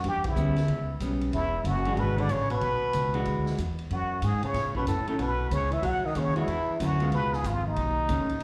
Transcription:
0.04 E2 G2, ride
0.08 G4
0.24 E2, kick, ride
0.29 E4
0.36 D2 G3 B3 C#4, hi-hat pedal
0.56 snare, ride
0.68 C#2, ride
1.00 B1 G3 B3 C#4, hi-hat pedal, ride
1.21 ride
1.32 E1 E2 E4, ride
1.64 F#1 F#2 F#4, hi-hat pedal, ride
1.85 E3 G#3 D4 F#4, ride
1.97 G#1 B2 B4, ride
2.17 D3 D5, ride
2.29 A1 C#3 C#5, hi-hat pedal, ride
2.50 B2 B4, ride
2.61 B1, ride
2.82 muted upright bass stroke
2.93 C#2, hi-hat pedal, ride
3.13 E3 G#3 D4 F#4, ride
3.25 D2, ride
3.46 snare
3.58 E2, hi-hat pedal, ride
3.79 ride
3.90 F#2 F#4, ride
4.22 G#2 G#4, hi-hat pedal, ride
4.42 C#3 C#5, muted upright bass stroke, ride
4.54 A2, snare, ride
4.75 B2 E3 A3 C#4 B4, kick
4.86 F#2 A2 A4, hi-hat pedal, ride
5.07 A2 D#3 A3 C#4 A4, ride
5.18 B1 B2 B4, ride
5.51 C#2 C#3 C#5, hi-hat pedal, ride
5.71 E3 E5, ride
5.82 B1 F#3 F#5, ride
6.04 D#3 D#5, muted upright bass stroke
6.15 D#2 C#3 C#5, hi-hat pedal, ride
6.35 E2 E3 G#3 D4 E4 F#4, ride
6.47 E2, ride
6.67 muted upright bass stroke
6.80 D2 F#2 F#4, hi-hat pedal, ride
7.00 G#3 B3 F4, ride
7.12 C#2 B2 B4, ride
7.33 G#2 G#4, snare
7.44 G#1 F2 F4, hi-hat pedal, ride
7.67 D#2 D#4
7.76 B1, ride
8.08 C#2 D#3 A3 C#4, hi-hat pedal, ride
8.20 B1
8.29 A1, ride
8.40 ride

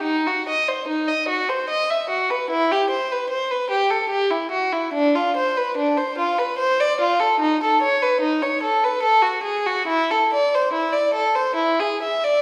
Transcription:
0.03 D#4
0.27 F#4
0.49 D#5
0.69 C5
0.88 D#4
1.08 D#5
1.29 F#4
1.49 C5
1.69 D#5
1.90 E5
2.10 F#4
2.30 B4
2.50 E4
2.71 G4
2.90 C5
3.12 B4
3.30 C5
3.51 B4
3.70 G4
3.90 A4
4.10 G4
4.31 E4
4.51 F#4
4.73 E4
4.94 D4
5.16 F4
5.37 C5
5.57 B4
5.77 D4
5.98 C5
6.18 F4
6.39 B4
6.58 C5
6.81 D5
7.01 F4
7.20 A4
7.40 D#4
7.64 A4
7.82 C#5
8.02 B4
8.21 D#4
8.42 C#5
8.63 A4
8.84 B4
9.03 A4
9.22 F#4
9.43 G#4
9.66 F#4
9.87 E4
10.11 A4
10.34 D5
10.55 C5
10.73 E4
10.92 D5
11.14 A4
11.35 C5
11.55 E4
11.80 G#4
12.02 E5
12.24 D5

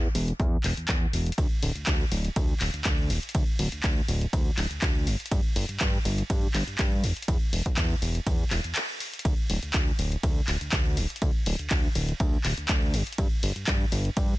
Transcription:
0.15 E1, open hi-hat
0.28 closed hi-hat
0.40 E2, kick, closed hi-hat
0.64 E1, clap, open hi-hat
0.77 E2, closed hi-hat
0.89 E2, kick, clap, closed hi-hat
1.13 E1, open hi-hat
1.26 closed hi-hat
1.32 closed hi-hat
1.38 D2, kick, closed hi-hat, ride
1.63 D1, open hi-hat
1.75 D2, closed hi-hat
1.87 D2, kick, clap, closed hi-hat, ride
2.12 D1, open hi-hat
2.25 closed hi-hat
2.36 D2, kick, closed hi-hat, ride
2.60 D1, clap, open hi-hat
2.74 D2, closed hi-hat
2.85 D2, kick, clap, closed hi-hat, ride
3.10 D1, open hi-hat
3.23 closed hi-hat
3.29 closed hi-hat
3.35 D2, kick, closed hi-hat, ride
3.59 D1, open hi-hat
3.72 D2, closed hi-hat
3.83 D2, kick, clap, closed hi-hat, ride
4.08 D1, open hi-hat
4.21 closed hi-hat
4.33 D2, kick, closed hi-hat, ride
4.57 D1, clap, open hi-hat
4.71 D2, closed hi-hat
4.82 D2, kick, clap, closed hi-hat, ride
5.07 G1, open hi-hat
5.20 closed hi-hat
5.26 closed hi-hat
5.31 G2, kick, closed hi-hat, ride
5.56 G1, open hi-hat
5.69 G2, closed hi-hat
5.80 G2, kick, clap, closed hi-hat, ride
6.05 G1, open hi-hat
6.18 closed hi-hat
6.30 G2, kick, closed hi-hat, ride
6.54 G1, clap, open hi-hat
6.67 G2, closed hi-hat
6.79 G2, kick, clap, closed hi-hat, ride
7.03 E1, open hi-hat
7.17 closed hi-hat
7.22 closed hi-hat
7.28 E2, kick, closed hi-hat, ride
7.53 E1, open hi-hat
7.66 E2, kick, closed hi-hat
7.77 E2, kick, clap, closed hi-hat, ride
8.02 E1, open hi-hat
8.15 closed hi-hat
8.26 E2, kick, closed hi-hat, ride
8.51 E1, clap, open hi-hat
8.64 E2, closed hi-hat
8.75 clap, closed hi-hat, ride
9.00 open hi-hat
9.14 closed hi-hat
9.19 closed hi-hat
9.25 D2, kick, closed hi-hat, ride
9.50 D1, open hi-hat
9.63 D2, closed hi-hat
9.74 D2, kick, clap, closed hi-hat, ride
9.99 D1, open hi-hat
10.12 closed hi-hat
10.23 D2, kick, closed hi-hat, ride
10.48 D1, clap, open hi-hat
10.61 D2, closed hi-hat
10.72 D2, kick, clap, closed hi-hat, ride
10.97 D1, open hi-hat
11.10 closed hi-hat
11.16 closed hi-hat
11.22 D2, kick, closed hi-hat, ride
11.46 D1, open hi-hat
11.59 D2, closed hi-hat
11.70 D2, kick, clap, closed hi-hat, ride
11.95 D1, open hi-hat
12.09 closed hi-hat
12.20 D2, kick, closed hi-hat, ride
12.44 D1, clap, open hi-hat
12.58 D2, closed hi-hat
12.69 D2, kick, clap, closed hi-hat, ride
12.94 G1, open hi-hat
13.07 closed hi-hat
13.13 closed hi-hat
13.18 G2, kick, closed hi-hat, ride
13.43 G1, open hi-hat
13.56 G2, closed hi-hat
13.67 G2, kick, clap, closed hi-hat, ride
13.92 G1, open hi-hat
14.05 closed hi-hat
14.17 G2, kick, closed hi-hat, ride

